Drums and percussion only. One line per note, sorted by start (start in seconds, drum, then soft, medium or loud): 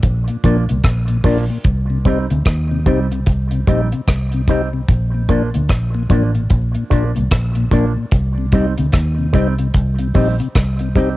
0.03 kick loud
0.03 closed hi-hat medium
0.28 closed hi-hat medium
0.44 kick medium
0.44 closed hi-hat medium
0.69 closed hi-hat medium
0.84 kick loud
0.84 cross-stick loud
0.84 closed hi-hat medium
1.08 closed hi-hat soft
1.24 kick medium
1.24 open hi-hat medium
1.64 kick loud
1.64 closed hi-hat medium
2.05 kick medium
2.05 closed hi-hat medium
2.30 closed hi-hat medium
2.45 kick loud
2.45 cross-stick loud
2.45 closed hi-hat medium
2.86 kick medium
2.86 closed hi-hat medium
3.12 closed hi-hat medium
3.26 kick loud
3.26 closed hi-hat loud
3.51 closed hi-hat medium
3.67 kick medium
3.67 closed hi-hat medium
3.92 closed hi-hat medium
4.08 kick loud
4.08 cross-stick loud
4.08 closed hi-hat medium
4.32 closed hi-hat soft
4.48 kick medium
4.48 closed hi-hat medium
4.88 kick loud
4.88 closed hi-hat medium
5.29 kick medium
5.29 closed hi-hat medium
5.54 closed hi-hat medium
5.69 kick loud
5.69 cross-stick loud
5.69 closed hi-hat loud
6.10 kick medium
6.10 closed hi-hat medium
6.35 closed hi-hat soft
6.50 kick loud
6.50 closed hi-hat medium
6.75 closed hi-hat medium
6.91 kick medium
6.91 closed hi-hat medium
7.16 closed hi-hat medium
7.31 kick loud
7.31 cross-stick loud
7.31 closed hi-hat medium
7.55 closed hi-hat soft
7.71 kick medium
7.71 closed hi-hat medium
8.11 kick loud
8.11 closed hi-hat medium
8.52 kick medium
8.52 closed hi-hat medium
8.78 closed hi-hat medium
8.92 kick loud
8.92 cross-stick loud
8.92 closed hi-hat medium
9.34 kick medium
9.34 closed hi-hat medium
9.59 closed hi-hat medium
9.74 kick loud
9.74 closed hi-hat loud
9.99 closed hi-hat medium
10.15 kick medium
10.15 open hi-hat medium
10.40 closed hi-hat medium
10.55 kick loud
10.55 cross-stick loud
10.55 closed hi-hat medium
10.79 closed hi-hat soft
10.95 kick medium
10.95 closed hi-hat medium